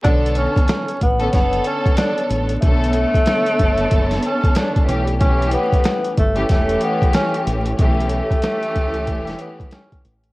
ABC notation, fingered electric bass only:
X:1
M:4/4
L:1/16
Q:"Swing 16ths" 1/4=93
K:Bm
V:1 name="Fingered electric bass" clef=bass
B,,,3 z3 A,,,2 F,,,2 z4 A,,,2 | B,,,3 z3 F,,,2 F,,,2 z4 B,,,2- | B,,,3 z3 G,,,2 E,,,2 z4 A,,,2 | B,,,3 z3 C,,2 E,,,2 z4 A,,,2 |]